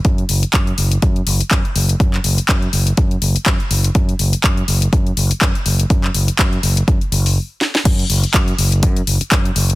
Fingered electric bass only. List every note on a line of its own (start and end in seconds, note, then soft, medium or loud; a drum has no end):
0.05 0.22 F#2 loud
0.29 0.43 F#1 medium
0.43 muted fingered electric bass stroke soft
0.54 0.71 F#2 medium
0.78 0.95 F#1 medium
1.02 1.20 F#2 medium
1.27 1.40 F#1 loud
1.41 muted fingered electric bass stroke soft
1.51 1.60 F#2 medium
1.76 1.93 F#1 medium
2.00 2.17 F#2 loud
2.24 2.38 F#1 medium
2.38 muted fingered electric bass stroke soft
2.49 2.66 F#2 medium
2.73 2.91 F#1 medium
2.98 3.15 F#2 medium
3.22 3.35 F#1 loud
3.36 muted fingered electric bass stroke soft
3.46 3.56 F#2 medium
3.71 3.88 F#1 medium
3.95 4.13 F#2 loud
4.19 4.33 F#1 medium
4.33 muted fingered electric bass stroke soft
4.44 4.61 F#2 medium
4.68 4.86 F#1 medium
4.93 5.10 F#2 medium
5.17 5.30 F#1 loud
5.31 muted fingered electric bass stroke soft
5.41 5.51 F#2 medium
5.66 5.83 F#1 medium
5.90 6.08 F#2 loud
6.15 6.28 F#1 medium
6.28 muted fingered electric bass stroke soft
6.39 6.56 F#2 medium
6.63 6.81 F#1 medium
6.88 6.97 F#2 medium
7.12 7.36 F#1 medium
7.85 8.03 F#2 loud
8.10 8.23 F#1 medium
8.23 muted fingered electric bass stroke soft
8.34 8.52 F#2 medium
8.58 8.84 F#1 medium
8.83 9.00 F#2 medium
9.07 9.17 F#1 medium
9.21 muted fingered electric bass stroke soft
9.32 9.49 F#2 medium
9.56 9.73 F#1 loud